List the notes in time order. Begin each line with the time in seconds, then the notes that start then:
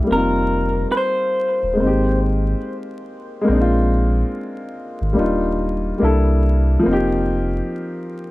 Already playing: G3 A#3 D4 E4 A4
0.04 G3 A#3
0.10 F1 C4 D#4 A#4
0.17 F4
0.92 B4
0.97 C5
1.63 D#1
1.73 G#3 A#3
1.79 G#1 C4 D#4
1.87 G4
3.41 G#3 A#3
3.48 A#1 C4 D4
3.55 D#4
3.61 F4
5.01 G#1
5.13 G3 A#3 D4
5.18 D#1 D#4 F4
5.98 G3 A#3 D4
6.02 C2 E4 A4
6.79 F3 A#3
6.86 F1 C4 D#4
6.93 G4